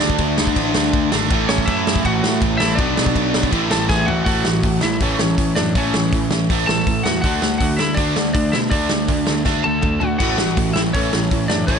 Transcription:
Already playing: distorted electric guitar D3 A3 D4, lead electric guitar D4 D5
0.03 picked electric bass D2
0.10 kick
0.18 picked electric bass D2, kick, crash
0.38 picked electric bass D2, snare
0.47 kick
0.56 picked electric bass A1, kick, crash
0.75 picked electric bass D2, snare
0.93 picked electric bass D2, kick, crash
1.12 picked electric bass G#1, distorted electric guitar D3 A3 D4, snare
1.30 picked electric bass A1, distorted electric guitar A2 E3 A3, kick, crash
1.49 picked electric bass A1, lead electric guitar C#4 C#5, snare
1.58 kick
1.66 picked electric bass F#2, lead electric guitar E4 E5, kick, crash
1.87 snare
1.96 kick
2.05 picked electric bass A1, lead electric guitar F#4 F#5, kick, crash
2.23 picked electric bass A2, snare
2.42 picked electric bass A1, kick, crash
2.58 picked electric bass A1, distorted electric guitar E3 A3, lead electric guitar E4 E5, snare
2.63 distorted electric guitar A2
2.75 picked electric bass B1, distorted electric guitar B2, lead electric guitar D4 D5, kick, crash
2.80 distorted electric guitar F#3 B3
2.97 picked electric bass B1, snare
3.06 kick
3.16 picked electric bass B1, kick, crash
3.34 picked electric bass B1, snare
3.43 kick
3.52 picked electric bass A1, distorted electric guitar A2 E3 A3, kick, crash
3.71 picked electric bass A1, lead electric guitar A4 A5, snare
3.89 picked electric bass A1, lead electric guitar G#4 G#5, kick, snare
4.06 lead electric guitar F#4 F#5, floor tom
4.10 picked electric bass A1
4.24 picked electric bass A1, distorted electric guitar A2 E3 A3, lead electric guitar F#4 F#5, kick, open hi-hat
4.45 picked electric bass A1, distorted electric guitar A2 E3, snare
4.63 picked electric bass A1, distorted electric guitar A2 E3, kick, open hi-hat
4.81 picked electric bass A1, distorted electric guitar A2 E3, lead electric guitar E4 E5, snare
5.00 picked electric bass A1, distorted electric guitar A2 E3 A3, lead electric guitar C#4 C#5, kick, open hi-hat
5.19 picked electric bass A1, distorted electric guitar A2 E3, snare
5.38 picked electric bass A1, distorted electric guitar A2 E3, kick, open hi-hat
5.55 picked electric bass F#2, distorted electric guitar A2 E3, lead electric guitar D4 D5, snare
5.75 picked electric bass A1, distorted electric guitar A2 E3 A3, lead electric guitar C#4 C#5, kick, open hi-hat
5.94 picked electric bass A1, distorted electric guitar A2 E3, snare
6.13 picked electric bass A1, distorted electric guitar A2 E3, kick, open hi-hat
6.31 picked electric bass A1, distorted electric guitar A2 E3, snare
6.50 picked electric bass A1, distorted electric guitar A2 E3 A3, kick, open hi-hat
6.67 picked electric bass A1, distorted electric guitar A2 E3, lead electric guitar A4 A5, snare
6.87 picked electric bass A1, distorted electric guitar A2 E3, kick, open hi-hat
7.03 picked electric bass E2, distorted electric guitar A2 E3, lead electric guitar F#4 F#5, snare
7.22 picked electric bass D2, distorted electric guitar D3, lead electric guitar F#4 F#5, kick, open hi-hat
7.26 distorted electric guitar A3 D4
7.42 picked electric bass D2, distorted electric guitar D3 A3, snare
7.58 picked electric bass D2, distorted electric guitar D3 A3, lead electric guitar F#4 F#5, kick, open hi-hat
7.77 picked electric bass D2, distorted electric guitar D3 A3, lead electric guitar E4 E5, snare
7.95 picked electric bass D2, distorted electric guitar D3, lead electric guitar D4 D5, kick, open hi-hat
7.99 distorted electric guitar A3 D4
8.16 picked electric bass D2, distorted electric guitar D3 A3, snare
8.33 picked electric bass D2, distorted electric guitar D3 A3, lead electric guitar D4 D5, kick, open hi-hat
8.52 picked electric bass B2, distorted electric guitar D3 A3, lead electric guitar E4 E5, snare
8.70 picked electric bass D2, distorted electric guitar D3 A3 D4, lead electric guitar D4 D5, kick, open hi-hat
8.89 picked electric bass D2, distorted electric guitar D3 A3, snare
9.08 picked electric bass D2, distorted electric guitar D3 A3, kick, open hi-hat
9.26 picked electric bass D2, distorted electric guitar D3 A3, snare
9.45 picked electric bass D2, distorted electric guitar D3 A3 D4, kick, snare
9.63 picked electric bass D2, distorted electric guitar D3 A3, lead electric guitar A4 A5, high tom
9.82 picked electric bass D2, distorted electric guitar D3 A3, kick, mid tom
10.00 picked electric bass D2, distorted electric guitar D3 A3, lead electric guitar F#4 F#5, floor tom
10.19 picked electric bass A1, distorted electric guitar A2 E3 A3, lead electric guitar F#4 F#5, kick, crash
10.38 picked electric bass A1, distorted electric guitar A2 E3, snare
10.57 picked electric bass A1, distorted electric guitar A2 E3, kick, open hi-hat
10.73 picked electric bass A1, distorted electric guitar A2 E3, lead electric guitar E4 E5, snare
10.93 picked electric bass A1, distorted electric guitar A2 E3 A3, lead electric guitar C#4 C#5, kick, open hi-hat
11.13 picked electric bass A1, distorted electric guitar A2 E3, snare
11.31 picked electric bass A1, distorted electric guitar A2 E3, kick, open hi-hat
11.48 picked electric bass F#2, distorted electric guitar A2 E3, lead electric guitar D4 D5, snare
11.67 picked electric bass A1, distorted electric guitar A2 E3 A3, lead electric guitar C#4 C#5, kick, open hi-hat

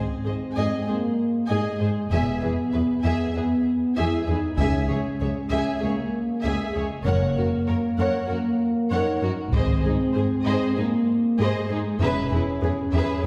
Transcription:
Already playing: french horn section C4
0.24 cello section G#2, viola section G#4, violin section C5 D#5
0.55 cello section G#2, viola section G#4, violin section D#5 G#5
0.87 cello section G#2, french horn section A#3, viola section G#4, violin section G#4 C5
1.48 cello section G#2, french horn section G#3, viola section G#4, violin section D#5 G#5
1.80 cello section G#2, viola section G#4, violin section G#4 C5
2.11 double bass section E1, cello section E2, french horn section B3, viola section G#4, violin section E5 G#5
2.41 cello section E2, viola section G#4, violin section G#4 B4
2.72 cello section E2, viola section G#4, violin section B4 E5
3.03 cello section E2, viola section G#4, violin section E5 G#5
3.34 cello section E2, french horn section B3, viola section G#4, violin section G#4 B4
3.96 cello section E2, french horn section E4, viola section G#4, violin section E5 G#5
4.27 cello section E2, french horn section D#4, violin section G#4 B4, viola section G#4
4.57 double bass section C#2, cello section C#2, french horn section C#4, viola section G#4, violin section E5 G#5, taiko
4.88 cello section C#2, violin section G#4 C#5, viola section G#4
5.20 cello section C#2, viola section G#4, violin section C#5 E5
5.50 cello section C#2, viola section G#4, violin section E5 G#5
5.81 cello section C#2, french horn section A#3, viola section G#4, violin section G#4 C#5
6.41 cello section C#2, french horn section G#3, viola section G#4, violin section E5 G#5
6.73 cello section C#2, viola section G#4, violin section G#4 C#5
7.04 double bass section F#1, cello section F#2, french horn section A#3, viola section A#4, violin section C#5 F#5
7.37 cello section F#2, violin section F#4 A#4, viola section A#4
7.67 cello section F#2, violin section A#4 C#5, viola section A#4
7.98 cello section F#2, viola section A#4, violin section C#5 F#5
8.28 cello section F#2, french horn section A#3, violin section F#4 A#4, viola section A#4
8.90 cello section F#2, french horn section D#4, viola section A#4, violin section C#5 F#5
9.22 cello section F#2, violin section F#4 A#4, viola section A#4
9.52 double bass section G#1, cello section G#2, french horn section C4, viola section G#4, violin section C5 D#5, taiko
9.82 cello section G#2, violin section G#4, viola section G#4
9.87 violin section D#4
10.12 cello section G#2, viola section G#4, violin section C5
10.18 violin section G#4
10.44 cello section G#2, viola section G#4, violin section C5 D#5
10.75 cello section G#2, french horn section A#3, violin section D#4 G#4, viola section G#4
11.38 cello section G#2, french horn section G#3, viola section G#4, violin section C5 D#5
11.69 cello section G#2, violin section D#4 G#4, viola section G#4
11.99 double bass section E1, cello section E2, french horn section C#4, viola section G#4, violin section B4 E5
12.30 cello section E2, violin section G#4, viola section G#4
12.34 violin section E4
12.61 cello section E2, viola section G#4, violin section G#4 B4
12.92 cello section E2, viola section G#4, violin section B4 E5
13.23 violin section E4 G#4

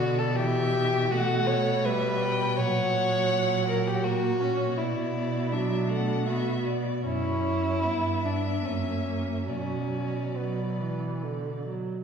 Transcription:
Already playing: cello B2, viola D3, violin F#4 D5
0.19 violin A4
0.35 viola E3, violin G4 E5
1.11 viola A3, violin F#4 F#5
1.47 violin C#5
1.84 viola G3, violin B4 E5
2.21 violin G5
2.57 cello A#2, viola F#3, violin C#5 F#5
3.68 violin A#4
3.87 violin G4
4.04 viola A#3, violin F#4 A#4
4.40 viola C#4, violin C#5
4.77 cello B2, viola B3, violin E4 D5
5.52 viola F#3, violin D4 E5
5.89 viola A3, violin F#5
6.26 viola B3, violin F#4 E5
6.65 violin D5
7.05 cello F#2, viola C#4, violin E4 C#5
7.82 cello G2, viola B3, violin E5
8.25 violin D4
8.64 cello F#2, viola A#3, violin C#4
9.48 cello B2, viola F#3, violin C#4 D5
10.37 viola F#3, violin B3
10.80 viola E3
11.23 viola D3
11.67 viola F#3

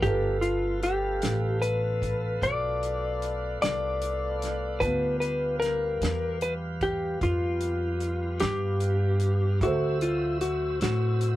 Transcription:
0.01 upright bass G1, upright piano F4 A4 B4, electric slide guitar G4, kick, closed hi-hat
0.06 tonewheel organ A3 B3 F4
0.41 electric slide guitar F4, closed hi-hat
0.83 electric slide guitar G4, closed hi-hat
1.22 upright bass A1, snare, closed hi-hat
1.62 electric slide guitar B4, closed hi-hat
2.02 kick, closed hi-hat
2.42 upright bass B1, electric slide guitar D5, kick, closed hi-hat
2.83 closed hi-hat
3.22 closed hi-hat
3.62 upright bass C2, electric slide guitar D5, snare, closed hi-hat
4.02 closed hi-hat
4.42 snare, closed hi-hat
4.80 upright bass D2, tonewheel organ B3, upright piano B3 F4 A5, electric slide guitar B4, kick, closed hi-hat
4.85 tonewheel organ G3 F4
5.20 electric slide guitar B4, closed hi-hat
5.60 electric slide guitar A#4, snare, closed hi-hat
6.01 upright bass E2, snare, closed hi-hat
6.41 electric slide guitar B4, closed hi-hat
6.81 electric slide guitar G4, kick, closed hi-hat
7.21 upright bass F2, electric slide guitar F4, kick, closed hi-hat
7.61 closed hi-hat
8.00 closed hi-hat
8.40 upright bass G2, electric slide guitar G4, snare, closed hi-hat
8.80 closed hi-hat
9.20 closed hi-hat
9.61 upright bass D2, electric slide guitar F#4, upright piano A4 C5 E5, tonewheel organ E5, kick, closed hi-hat
9.66 tonewheel organ F#3 C4
10.01 electric slide guitar F4, closed hi-hat
10.41 electric slide guitar F#4, closed hi-hat
10.81 upright bass A2, electric slide guitar F#4, snare, closed hi-hat
11.21 closed hi-hat

